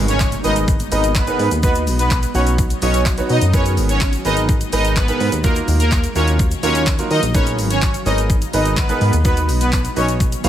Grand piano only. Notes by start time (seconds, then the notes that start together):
Already playing: B3 D#4 G#4 A#4 B4
0.44 B3 D#4 G#4 A#4 B4
0.92 B3 D#4 G#4 A#4 B4
1.27 B3 D#4 G#4 A#4 B4
1.63 B3 D#4 F#4 B4 D#5
2.35 B3 D#4 F#4 B4 F#5
2.82 B3 D#4 F#4 B4 D#5
3.18 B3 D#4 F#4 B4 C#5
3.53 B3 D#4 G#4 A#4 B4
4.25 B3 D#4 G#4 A#4 B4
4.73 B3 D#4 G#4 A#4 B4
5.08 B3 D#4 G#4 A#4 B4
5.44 A#3 D#4 F4 F#4 A#4
6.15 A#3 D#4 F4 F#4 A#4
6.63 A#3 D#4 F4 F#4 A#4
6.99 A#3 D#4 F4 F#4 A#4
7.34 B3 D#4 G#4 A#4 B4
8.06 B3 D#4 G#4 A#4 C#5
8.54 B3 D#4 G#4 A#4 B4
8.89 B3 D#4 G#4 A#4 B4
9.25 B3 D#4 F#4 B4 D#5
9.96 B3 D#4 F#4 B4 D#5
10.44 B3 D#4 F#4 B4 F5